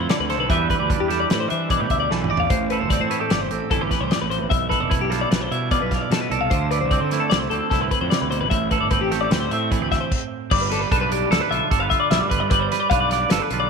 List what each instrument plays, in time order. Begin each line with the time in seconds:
Already playing: clean electric guitar A3 C4 E4 D5
0.09 clean electric guitar D3 D5, snare, closed hi-hat
0.19 fingered electric bass D2, clean electric guitar B4
0.30 clean electric guitar A4 C5, snare, closed hi-hat
0.39 fingered electric bass B1, clean electric guitar B4
0.49 fingered electric bass E2, clean electric guitar E3 G3 D4 G4 B4 E5, kick, closed hi-hat
0.70 clean electric guitar B4, kick, closed hi-hat
0.80 fingered electric bass D2, clean electric guitar D5
0.90 clean electric guitar D4 B4, kick, closed hi-hat
1.00 fingered electric bass E2, clean electric guitar G4
1.08 clean electric guitar G3 G4 A4, snare, closed hi-hat
1.20 clean electric guitar D5
1.30 fingered electric bass A2, clean electric guitar B4, snare, closed hi-hat
1.40 clean electric guitar C5
1.49 fingered electric bass E3, clean electric guitar D4 E5, closed hi-hat
1.69 clean electric guitar B2 E4 D5, kick, closed hi-hat
1.80 fingered electric bass A2, clean electric guitar G4 B4
1.90 fingered electric bass D2, clean electric guitar E5, kick, closed hi-hat
2.00 clean electric guitar D5
2.11 fingered electric bass B1, clean electric guitar E3 A4, snare
2.21 clean electric guitar B4, mid tom
2.30 fingered electric bass A1, clean electric guitar D5
2.37 clean electric guitar F5, floor tom
2.50 fingered electric bass A1, clean electric guitar A2 C5, kick, closed hi-hat
2.70 clean electric guitar A4 B4, closed hi-hat
2.80 fingered electric bass G1, clean electric guitar C5
2.90 clean electric guitar C4 D5, kick, snare, closed hi-hat
3.00 fingered electric bass A2, clean electric guitar C5
3.10 clean electric guitar A3 E4 B4, closed hi-hat
3.19 clean electric guitar G4 A4
3.30 fingered electric bass G1, clean electric guitar D5, snare, closed hi-hat
3.41 clean electric guitar C5
3.51 fingered electric bass A1, clean electric guitar C4 A4, closed hi-hat
3.71 fingered electric bass G1, clean electric guitar E3 E4 A4, kick, closed hi-hat
3.81 clean electric guitar G4 B4
3.91 clean electric guitar B4, kick, snare, closed hi-hat
4.01 fingered electric bass C2, clean electric guitar C5
4.11 clean electric guitar D5, snare, closed hi-hat
4.22 fingered electric bass A1, clean electric guitar B4
4.30 clean electric guitar A2 C5, closed hi-hat
4.40 fingered electric bass A1, clean electric guitar B4
4.49 fingered electric bass B1, clean electric guitar B2 E5, kick, closed hi-hat
4.69 clean electric guitar A4 B4, kick, closed hi-hat
4.81 fingered electric bass F1, clean electric guitar D5
4.89 clean electric guitar E4 B4, kick, closed hi-hat
5.00 fingered electric bass B1, clean electric guitar G4
5.10 clean electric guitar G3 F4 A4, snare, closed hi-hat
5.21 clean electric guitar D5
5.31 fingered electric bass B1, clean electric guitar B4, snare, closed hi-hat
5.41 clean electric guitar C5
5.51 fingered electric bass B2, clean electric guitar E4 E5, closed hi-hat
5.71 clean electric guitar B2 F4 D5, kick, closed hi-hat
5.82 fingered electric bass B1, clean electric guitar B4
5.91 clean electric guitar F5, kick, snare, closed hi-hat
6.02 clean electric guitar D5
6.10 fingered electric bass B2, clean electric guitar B2 A4, snare, closed hi-hat
6.21 clean electric guitar B4
6.30 fingered electric bass C2, clean electric guitar A4 D5, closed hi-hat
6.41 clean electric guitar F5
6.50 fingered electric bass D2, clean electric guitar D3 C5, kick, closed hi-hat
6.71 clean electric guitar B4 D5, closed hi-hat
6.81 fingered electric bass C2, clean electric guitar C5
6.91 clean electric guitar C4 D5, kick, closed hi-hat
7.00 fingered electric bass D3, clean electric guitar C5
7.11 clean electric guitar A3 E4 B4, snare, closed hi-hat
7.20 clean electric guitar A4
7.30 fingered electric bass C2, clean electric guitar D5, snare, closed hi-hat
7.39 clean electric guitar C5
7.50 fingered electric bass D2, clean electric guitar C4 A4, closed hi-hat
7.70 fingered electric bass C2, clean electric guitar A2 E4 A4, kick, snare, closed hi-hat
7.81 clean electric guitar B4
7.91 clean electric guitar B4, kick, closed hi-hat
8.01 fingered electric bass F2, clean electric guitar C5
8.10 clean electric guitar C3 D5, snare, closed hi-hat
8.22 fingered electric bass D2, clean electric guitar B4
8.30 clean electric guitar B2 C5, closed hi-hat
8.41 fingered electric bass A#1, clean electric guitar B4
8.50 fingered electric bass A1, clean electric guitar A2 E5, kick, closed hi-hat
8.71 clean electric guitar A4 B4, kick, closed hi-hat
8.80 fingered electric bass G1, clean electric guitar D5
8.91 clean electric guitar C4 B4, kick, closed hi-hat
9.01 fingered electric bass A1, clean electric guitar G4
9.11 clean electric guitar A3 G4 A4, snare, closed hi-hat
9.21 clean electric guitar D5
9.31 fingered electric bass D2, clean electric guitar B4, snare, closed hi-hat
9.40 clean electric guitar C5
9.51 fingered electric bass A2, clean electric guitar C4 E5, closed hi-hat
9.70 clean electric guitar E3 E4 D5, kick, closed hi-hat
9.81 fingered electric bass D2, clean electric guitar G4 B4
9.92 clean electric guitar E5, kick, snare, closed hi-hat
10.01 clean electric guitar C5
10.12 kick, crash
10.51 fingered electric bass G1, clean electric guitar G3 D5, kick, crash
10.61 clean electric guitar B4
10.70 clean electric guitar A4 B4, snare, closed hi-hat
10.81 clean electric guitar B4
10.91 fingered electric bass B1, clean electric guitar D4 A4 B4, kick, closed hi-hat
11.01 clean electric guitar B4
11.11 clean electric guitar G4 D5, closed hi-hat
11.31 fingered electric bass D2, clean electric guitar A4, snare, closed hi-hat
11.41 clean electric guitar B4
11.50 fingered electric bass B1, clean electric guitar D3 F4 E5, closed hi-hat
11.70 fingered electric bass G1, clean electric guitar A4 D5, kick, closed hi-hat
11.80 clean electric guitar B4 F5
11.90 clean electric guitar F4 E5, kick, closed hi-hat
12.00 clean electric guitar D5
12.11 fingered electric bass B1, clean electric guitar G3 E5, snare, closed hi-hat
12.20 fingered electric bass G2, clean electric guitar D5
12.30 fingered electric bass G1, clean electric guitar B4, kick, closed hi-hat
12.40 fingered electric bass G2, clean electric guitar D5
12.50 fingered electric bass G1, clean electric guitar G3 B4, kick, closed hi-hat
12.60 clean electric guitar C5
12.69 clean electric guitar B4, snare, closed hi-hat
12.80 clean electric guitar D5
12.90 fingered electric bass B1, clean electric guitar D4 B4 F5, kick, closed hi-hat
13.00 clean electric guitar D5
13.10 clean electric guitar D5 F5, snare, closed hi-hat
13.20 clean electric guitar D5
13.30 fingered electric bass G1, clean electric guitar A4 B4, snare, closed hi-hat
13.40 clean electric guitar A4 B4
13.50 fingered electric bass B1, clean electric guitar D3 F4 B4, closed hi-hat
13.60 clean electric guitar D5